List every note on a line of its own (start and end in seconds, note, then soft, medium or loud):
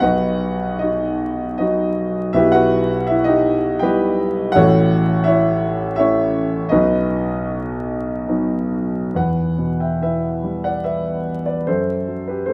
0.00 2.31 B1 medium
0.00 2.31 B2 medium
0.00 1.58 F#3 soft
0.00 1.58 B3 soft
0.00 0.82 D#4 soft
0.00 0.03 F#4 medium
0.00 0.78 F#4 medium
0.00 2.36 G4 medium
0.00 0.78 B4 medium
0.00 0.02 D#5 medium
0.00 0.77 D#5 medium
0.00 2.37 F#5 medium
0.00 2.37 G5 medium
0.79 1.56 D#4 soft
0.79 1.56 F#4 soft
0.79 1.56 D#5 medium
1.58 2.32 F#3 soft
1.58 2.32 B3 soft
1.58 2.33 D#4 soft
1.58 2.32 F#4 medium
1.58 2.37 D#5 medium
2.33 4.51 B1 medium
2.33 4.51 B2 medium
2.33 2.53 E4 medium
2.33 2.53 G4 medium
2.33 2.53 B4 medium
2.33 2.53 E5 medium
2.52 3.06 F#4 medium
2.52 3.06 B4 medium
2.52 3.10 F#5 medium
3.07 3.27 E4 medium
3.07 3.25 E5 medium
3.24 3.79 D#4 medium
3.24 3.79 G4 medium
3.24 3.83 D#5 medium
3.79 4.53 G3 soft
3.79 4.53 B3 soft
3.79 4.54 E4 soft
3.79 4.34 G4 medium
3.79 4.34 B4 medium
3.79 4.32 G5 medium
4.52 6.68 A1 medium
4.52 6.68 A2 medium
4.52 5.23 F#4 medium
4.52 5.23 A4 medium
4.52 5.23 C#5 medium
4.52 5.21 F#5 loud
5.24 5.95 E4 medium
5.24 5.95 C#5 medium
5.24 5.94 E5 medium
5.96 6.69 A3 soft
5.96 6.70 C#4 soft
5.96 6.70 E4 medium
5.96 6.69 C#5 medium
5.96 6.73 E5 medium
6.69 9.11 B1 medium
6.69 9.11 B2 medium
6.69 8.25 D#4 medium
6.69 8.24 F#4 medium
6.69 8.25 B4 medium
6.69 8.23 D#5 medium
8.28 9.12 F#3 soft
8.28 9.12 B3 soft
8.28 9.12 D#4 soft
9.14 11.63 E2 soft
9.14 9.77 B4 soft
9.14 9.83 F#5 medium
9.58 11.23 B2 soft
9.80 10.00 E5 soft
9.80 10.03 G5 medium
10.01 11.63 E3 soft
10.01 10.62 B4 soft
10.01 10.62 E5 medium
10.43 11.63 G3 soft
10.64 10.84 D5 soft
10.64 10.86 F#5 medium
10.84 11.43 B4 soft
10.84 11.42 E5 medium
11.46 11.66 B4 soft
11.46 11.68 D5 medium
11.67 12.53 F#2 soft
11.67 12.25 A4 medium
11.67 12.30 C5 medium
12.08 12.53 F#3 soft
12.28 12.48 G4 soft
12.28 12.47 B4 soft
12.46 12.53 A3 soft
12.46 12.53 A4 soft
12.46 12.53 C5 medium